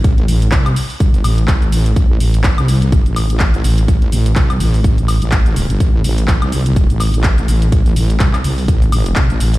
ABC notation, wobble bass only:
X:1
M:4/4
L:1/16
Q:"Swing 16ths" 1/4=125
K:Am
V:1 name="Wobble bass" clef=bass
A,,,2 A,,,2 C,,2 z2 G,,,2 A,,,2 A,,,4 | A,,,2 A,,,3 C,,4 A,,,4 A,,, A,,,2 | A,,,2 A,,,2 C,,2 A,,,3 A,,,2 A,,,4 G,,, | A,,,2 A,,,3 C,,4 A,,,4 A,,, A,,,2 |
A,,,2 A,,,2 C,,2 C,,2 A,,,4 C,, A,,, A,,,2 |]